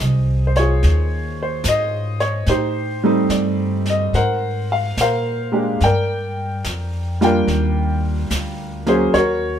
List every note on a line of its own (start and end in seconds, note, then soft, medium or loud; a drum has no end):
0.00 0.81 C2 medium
0.00 0.58 G#4 medium
0.00 0.46 C5 medium
0.00 1.68 D#5 medium
0.00 snare soft
0.00 hi-hat pedal soft
0.47 0.56 C5 medium
0.56 2.17 F4 soft
0.56 2.18 G#4 soft
0.56 1.41 C#5 medium
0.56 snare soft
0.83 1.63 D#2 medium
0.83 brush sweep soft
0.83 snare soft
1.43 1.68 C5 medium
1.64 2.44 G#2 medium
1.64 snare soft
1.64 hi-hat pedal medium
1.68 2.23 D#5 medium
2.20 2.45 C#5 medium
2.20 snare soft
2.46 3.27 A2 medium
2.46 3.04 D#4 medium
2.46 4.10 G4 medium
2.46 3.33 C5 medium
2.46 brush sweep soft
2.46 snare soft
3.04 4.08 G3 medium
3.04 4.08 A3 medium
3.04 4.08 C4 medium
3.04 4.09 D#4 medium
3.29 4.10 G2 medium
3.29 3.88 D5 medium
3.29 snare soft
3.29 hi-hat pedal medium
3.86 snare soft
3.90 4.16 D#5 medium
4.13 4.94 G#2 medium
4.13 5.00 A#4 medium
4.13 4.99 C5 medium
4.13 4.72 F#5 medium
4.13 brush sweep soft
4.13 snare soft
4.72 4.99 F5 medium
4.97 5.78 A#2 medium
4.97 snare medium
4.97 hi-hat pedal soft
5.01 5.78 A#4 medium
5.01 5.78 C5 medium
5.01 5.85 F5 medium
5.52 5.77 G#3 soft
5.52 5.77 A#3 soft
5.52 5.78 D4 soft
5.52 5.78 G4 medium
5.80 6.61 G2 medium
5.80 7.23 D5 medium
5.80 7.17 G5 medium
5.80 brush sweep soft
5.80 snare soft
5.85 7.23 A#4 medium
6.64 7.45 F2 medium
6.64 snare medium
6.64 hi-hat pedal soft
7.21 7.45 G3 medium
7.21 7.45 A#3 medium
7.21 7.45 D4 medium
7.21 7.45 F4 medium
7.21 8.84 A#4 medium
7.21 8.84 D5 medium
7.21 8.28 G5 medium
7.21 snare soft
7.47 8.28 D#2 medium
7.47 brush sweep soft
7.47 snare soft
8.30 9.10 D2 medium
8.30 snare medium
8.30 hi-hat pedal medium
8.86 9.10 F#3 medium
8.86 9.10 A#3 medium
8.86 9.11 C#4 medium
8.86 9.11 G#4 medium
8.86 9.15 C5 medium
8.86 snare soft
9.13 9.59 D#2 medium
9.13 9.59 F#4 medium
9.13 9.59 A#4 medium
9.13 9.59 C#5 medium
9.13 brush sweep soft
9.13 snare soft